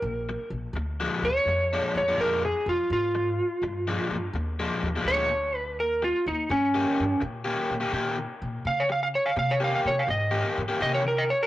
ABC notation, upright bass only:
X:1
M:4/4
L:1/8
Q:"Swing" 1/4=84
K:Eb
V:1 name="Upright bass" clef=bass
B,,, B,,, D,, D,, F,, F,, F,, F,, | A,,2 G,, G,, E,, E,, D,,2 | E,, E,, G,, G,, B,, B,, B,, B,, | _D,2 C, C, A,, A,, C,2 |]